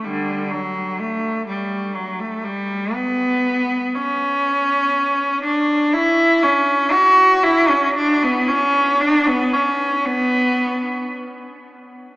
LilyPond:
\new Staff \with { instrumentName = "Cello" } { \time 4/4 \key b \minor \tempo 4 = 60 <d g>8 fis8 a8 g8 fis16 a16 g8 b4 | cis'4. d'8 e'8 cis'8 fis'8 e'16 cis'16 | d'16 b16 cis'8 d'16 b16 cis'8 b4 r4 | }